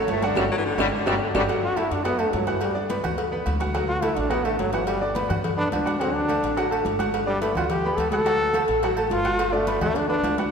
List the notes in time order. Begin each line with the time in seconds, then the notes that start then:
Already playing: A3 A4 C#5
0.08 G1 A2 A3, cowbell, high conga, low timbale
0.22 D3 F#3 D4 F#4 F#5, cowbell, high conga, low agogo
0.35 G1 D3 F#3 G3 D4 F#4 G4, cowbell, high conga, high timbale, claves
0.52 F#3
0.58 E3
0.65 D3
0.78 G1 D3 F#3 G3 D4 F#4 G4, cowbell, high conga, high timbale, claves
0.86 C#3
0.93 D3
1.06 G1 B2 D3 F#3 G3 D4 F#4 G4, cowbell, high conga, high timbale, claves
1.22 D3
1.35 G1 D3 F#3 G3 D4 F#4 G4, cowbell, high conga, high timbale, claves
1.48 F#3 F#4 F#5, cowbell, high conga, low agogo
1.64 F#4, high conga
1.76 A3 E4 A4 A5, cowbell, high conga, low agogo
1.91 F#2 D4, cowbell, high conga
2.05 F#3 B3 F#4 F#5, cowbell, high conga, low agogo
2.19 A3 A4 A5, high conga, low agogo
2.33 G2 F#3, cowbell, high conga, low timbale
2.47 E3 F#4 F#5 F#6, cowbell, high conga, low agogo
2.61 G3, cowbell, high conga, low agogo
2.75 D4 D5 D6, high conga
2.90 B3 B4 B5, cowbell, high conga, low agogo
3.04 D2 F#4 F#5 F#6, high conga, low conga, low agogo
3.18 cowbell, high conga, low agogo
3.32 B3 B4 B5, high conga
3.46 D2, cowbell, high conga, low agogo
3.60 F#4 F#5 F#6, cowbell, high conga
3.74 F#3 F#4 F#5, cowbell, high conga, low agogo
3.88 F#4, high conga
4.02 A3 E4 A4 A5, cowbell, high conga, low agogo
4.17 A1 D4, cowbell, high conga
4.30 F#3 B3 F#4 F#5, cowbell, high conga, low agogo
4.45 A3 A4 A5, high conga, low agogo
4.59 G1 F#3, cowbell, high conga
4.73 E3 F#4 F#5 F#6, cowbell, high conga, low agogo
4.87 G3, cowbell, high conga, low agogo
5.01 D4 D5 D6, high conga
5.15 B3 B4 B5, cowbell, high conga, low agogo
5.29 G2 F#4 F#5 F#6, high conga, low conga, low agogo
5.44 cowbell, high conga, low conga, low agogo
5.57 B3 D4 B4 B5, high conga
5.71 D2 D4, cowbell, high conga, low timbale, low agogo
5.85 F#4 F#5 F#6, cowbell, high conga
6.00 F#3 C4 F#4 F#5, cowbell, high conga, low agogo
6.14 D4, high conga
6.28 A3 A4 A5, cowbell, high conga, low agogo
6.43 A1, cowbell, high conga
6.57 F#3 F#4 F#5, cowbell, high conga, low agogo
6.70 A3 A4 A5, high conga, low agogo
6.85 G1, cowbell, high conga
6.99 F#4 F#5 F#6, cowbell, high conga, low agogo
7.13 cowbell, high conga, low agogo
7.26 G3 D4 D5 D6, high conga
7.42 A3 B3 B4 B5, cowbell, high conga, low agogo
7.55 D2 F4 F#4 F#5 F#6, high conga, low conga, low agogo
7.70 G4, cowbell, high conga, low conga, low agogo
7.84 B3 B4 B5, high conga
7.97 D2 A4, cowbell, high conga, low agogo
8.11 F#4 A4 F#5 F#6, cowbell, high conga
8.26 F#3 F#4 F#5, cowbell, high conga, low agogo
8.41 high conga
8.54 A3 A4 A5, cowbell, high conga, low agogo
8.68 A1, cowbell, high conga
8.82 F#3 F#4 F#5, cowbell, high conga, low agogo
8.96 A3 A4 A5, high conga, low agogo
9.10 G1 F4, cowbell, high conga, low timbale
9.24 F#4 F#5 F#6, cowbell, high conga, low agogo
9.39 cowbell, high conga, low agogo
9.52 A3 D4 D5 D6, high conga
9.67 B3 B4 B5, cowbell, high conga, low agogo
9.81 D2 A3 F#4 F#5 F#6, high conga, low conga, low agogo
9.95 D4, cowbell, high conga, low agogo
10.09 B3 D4 B4 B5, high conga
10.23 D2, cowbell, high conga, low timbale, low agogo
10.38 F#4 F#5 F#6, cowbell, high conga